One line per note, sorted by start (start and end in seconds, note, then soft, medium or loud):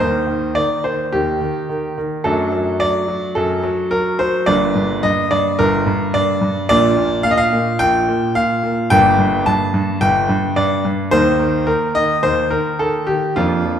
0.00 0.27 D#2 medium
0.00 0.26 D#3 medium
0.00 2.21 A#3 soft
0.00 2.21 D#4 soft
0.00 0.56 C5 loud
0.27 0.54 D#3 medium
0.55 0.83 D#3 medium
0.55 0.84 D5 loud
0.84 1.12 D#3 medium
0.84 1.12 C5 medium
1.12 1.40 D#2 medium
1.12 1.40 D#3 medium
1.12 1.97 G4 medium
1.41 1.68 D#3 medium
1.69 1.96 D#3 medium
1.98 2.24 D#3 medium
2.24 2.52 F#2 medium
2.24 2.51 F#3 medium
2.24 4.44 A3 medium
2.24 4.44 D4 soft
2.24 2.80 A4 medium
2.52 2.79 F#3 medium
2.80 3.07 F#3 medium
2.80 3.36 D5 loud
3.08 3.35 F#3 medium
3.35 3.63 F#2 medium
3.35 3.62 F#3 medium
3.35 3.91 A4 medium
3.63 3.90 F#3 medium
3.91 4.18 F#3 medium
3.91 4.19 A#4 medium
4.19 4.47 F#3 medium
4.19 4.47 C5 medium
4.46 4.75 G1 medium
4.46 4.74 G2 medium
4.46 6.65 A#3 medium
4.46 6.65 D4 medium
4.46 5.03 D5 loud
4.75 5.02 G2 medium
5.03 5.30 G2 medium
5.03 5.31 D#5 loud
5.31 5.58 G2 medium
5.31 5.59 D5 loud
5.59 5.86 G1 medium
5.59 5.85 G2 medium
5.59 6.14 A#4 loud
5.86 6.13 G2 medium
6.14 6.40 G2 medium
6.14 6.68 D5 loud
6.41 6.68 G2 medium
6.69 6.97 A#1 medium
6.69 6.95 A#2 medium
6.69 8.87 A#3 medium
6.69 8.87 D4 medium
6.69 7.25 D5 loud
6.97 7.23 A#2 medium
7.23 7.51 A#2 medium
7.23 7.31 F5 loud
7.31 7.38 D#5 loud
7.38 7.79 F5 loud
7.53 7.79 A#2 medium
7.79 8.07 A#1 medium
7.79 8.07 A#2 medium
7.79 8.35 G5 loud
8.09 8.34 A#2 medium
8.35 8.62 A#2 medium
8.35 8.91 F5 loud
8.63 8.90 A#2 medium
8.90 9.18 G1 medium
8.90 9.17 G2 medium
8.90 11.08 A#3 medium
8.90 11.08 D4 medium
8.90 9.46 G5 loud
9.19 9.45 G2 medium
9.46 9.72 G2 medium
9.46 10.01 A5 loud
9.74 10.00 G2 medium
10.01 10.28 G1 medium
10.01 10.28 G2 medium
10.01 10.56 G5 loud
10.29 10.55 G2 medium
10.56 10.83 G2 medium
10.56 10.84 D5 medium
10.85 11.11 G2 medium
11.11 11.39 D#2 medium
11.11 11.38 D#3 medium
11.11 13.33 A#3 medium
11.11 13.33 D#4 medium
11.11 11.67 C5 loud
11.39 11.66 D#3 medium
11.67 11.94 D#3 medium
11.67 11.95 A#4 medium
11.95 12.22 D#3 medium
11.95 12.23 D#5 loud
12.23 12.50 D#2 medium
12.23 12.50 D#3 medium
12.23 12.51 C5 loud
12.50 12.78 D#3 medium
12.50 12.79 A#4 medium
12.79 13.06 D#3 medium
12.79 13.08 A4 medium
13.07 13.36 D#3 medium
13.07 13.36 G4 medium
13.36 13.65 F2 medium
13.36 13.64 F3 medium
13.36 13.79 A#3 medium
13.36 13.79 D4 medium
13.36 13.79 F4 medium
13.65 13.79 F3 medium